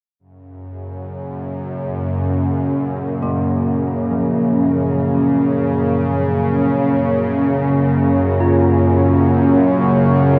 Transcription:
0.19 F#2 C#3 A#3 A#4
0.24 A#3
2.01 C#4
3.23 A#3
4.11 F3
6.14 C#5
8.40 F4

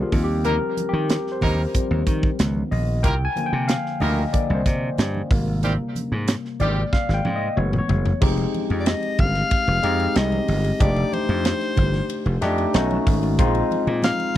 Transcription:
Already playing: D#3 F3 G#3 A#3 G4 G#4 A#4 C5 D5 F5 G5
0.02 F4
0.12 D#2 F3 G3 C4, kick, open hi-hat, muted conga
0.24 G4
0.44 G3 A#3 D#4 A#4, closed hi-hat, low conga
0.77 closed hi-hat, high conga
0.89 G4
0.93 D#3
1.09 snare, closed hi-hat, muted conga
1.27 snare
1.32 C5
1.41 D#2 G3 A#3 D#4 A#4, kick, open hi-hat, high conga, low conga
1.74 F3 G3 C4, kick, closed hi-hat
1.91 D#2
2.07 D#3, kick, closed hi-hat
2.23 kick
2.38 C#2 D#3 F3 B3, snare, closed hi-hat
2.55 high conga
2.71 A#1 D#5, open hi-hat, muted conga
3.03 C2 G3 A#3 F4 A#4 G5, kick, closed hi-hat, muted conga, low conga
3.25 G#5
3.35 D3 F3 A#3, closed hi-hat, muted conga, high conga
3.46 G5
3.53 C3
3.68 F5, snare, closed hi-hat
3.86 snare
4.00 D2 G3 A#3 F4 A#4 D#5, open hi-hat, muted conga, high conga, low conga
4.33 D3 F3 A#3 D5, kick, closed hi-hat, muted conga
4.50 C2
4.55 C5
4.66 C3, kick, snare, closed hi-hat, muted conga
4.98 G2, snare, closed hi-hat, muted conga
5.14 high conga
5.30 G#1 C3 G3 A#3, kick, open hi-hat, muted conga
5.63 D#3 G3 C4 G4, closed hi-hat, muted conga, low conga
5.95 closed hi-hat, muted conga, high conga
6.12 G#2
6.27 snare, closed hi-hat, muted conga
6.45 snare
6.60 G#1 D#3 G3 C4 G4 D5, closed hi-hat, high conga, low conga
6.93 F5, kick, snare
7.09 G#1, snare
7.14 G5
7.25 G#2, high tom, muted conga
7.36 D#5
7.56 F#1 E3 G#3 A3 B3 C#5
7.73 mid tom, high conga
7.79 C#5
7.89 F#1, floor tom, muted conga
8.06 floor tom
8.21 F1 G#3 C4 D#4 G4, kick, crash, low conga
8.37 ride
8.54 ride, muted conga, high conga
8.70 F2, ride
8.80 D5
8.86 D#5, snare, ride, muted conga, high conga
9.03 ride
9.18 G1 F5, kick, ride, high conga, low conga
9.35 snare, ride
9.51 kick, ride, muted conga
9.67 F1, ride
9.83 F2 G#3 C4 D#4 G4, snare, ride
10.00 ride
10.15 C2 D#5, snare, ride, muted conga
10.32 ride, high conga
10.48 G1, open hi-hat, ride, muted conga
10.64 ride
10.79 F1 G#3 D4 D#4 G4 D5, kick, hi-hat pedal, ride, muted conga, low conga
10.86 A3
10.96 ride
11.13 C5, ride, muted conga, high conga
11.29 F2, ride
11.44 snare, ride, high conga
11.61 snare, ride
11.77 G1, kick, ride, high conga, low conga
11.94 snare, ride
12.09 ride, muted conga
12.26 F1, ride
12.41 F2 A3 D4 D#4 G4, snare, ride, muted conga
12.58 ride
12.73 B1 A3 C#4 D#4 F#4, snare, ride, muted conga
12.90 ride, high conga
13.07 G#1, kick, open hi-hat, ride
13.23 ride
13.39 A#1 G#3 C4 D#4 F4, kick, hi-hat pedal, ride, muted conga, low conga
13.55 ride
13.71 ride, muted conga, high conga
13.87 A#2, ride
14.02 F5, snare, ride, muted conga, high conga
14.20 ride

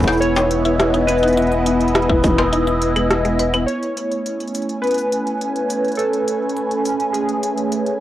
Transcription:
Already playing: E1 B3 E4 A4 C#5 G#5
0.00 kick, cabasa
0.04 E4, kick, closed hi-hat, struck metal, cabasa
0.12 cabasa
0.17 C#5, cabasa
0.22 closed hi-hat
0.36 D#4, closed hi-hat, struck metal, cabasa
0.41 D#5
0.51 closed hi-hat
0.65 E4, closed hi-hat
0.80 E4, cross-stick, closed hi-hat
0.94 D#4, closed hi-hat
1.07 B3 B4, closed hi-hat, cabasa
1.18 cabasa
1.23 D#4, closed hi-hat
1.28 closed hi-hat, cabasa
1.33 closed hi-hat
1.37 E4, closed hi-hat
1.42 closed hi-hat
1.47 closed hi-hat
1.52 closed hi-hat
1.66 D#4, closed hi-hat
1.81 closed hi-hat
1.88 closed hi-hat
1.95 E4, cross-stick, closed hi-hat
2.02 closed hi-hat
2.09 E4, kick
2.24 D#4, kick, closed hi-hat, cabasa
2.38 B3, closed hi-hat, struck metal
2.53 D#4, closed hi-hat
2.67 E4, closed hi-hat
2.82 closed hi-hat
2.96 G#3, closed hi-hat, claves
3.11 cross-stick, closed hi-hat
3.25 G#3, closed hi-hat
3.39 B4, closed hi-hat, claves
3.54 B3, closed hi-hat, claves
3.66 A3 C#5, closed hi-hat
3.83 closed hi-hat
3.97 closed hi-hat
4.09 G#5, closed hi-hat
4.17 C#4
4.26 closed hi-hat
4.40 closed hi-hat
4.48 closed hi-hat
4.55 closed hi-hat, cabasa
4.62 closed hi-hat
4.69 closed hi-hat
4.82 B4, closed hi-hat
4.87 closed hi-hat
4.91 closed hi-hat
4.94 closed hi-hat
4.98 closed hi-hat, cabasa
5.02 B4
5.12 closed hi-hat
5.27 closed hi-hat
5.41 closed hi-hat
5.56 closed hi-hat
5.70 closed hi-hat, cabasa
5.84 closed hi-hat
5.88 closed hi-hat
5.92 closed hi-hat
5.95 A4, closed hi-hat
5.99 closed hi-hat
6.13 closed hi-hat
6.28 closed hi-hat
6.49 closed hi-hat
6.57 closed hi-hat
6.71 closed hi-hat
6.85 closed hi-hat, cabasa
7.00 closed hi-hat
7.13 G#4, closed hi-hat
7.29 closed hi-hat
7.43 closed hi-hat
7.58 closed hi-hat
7.72 closed hi-hat
7.86 closed hi-hat

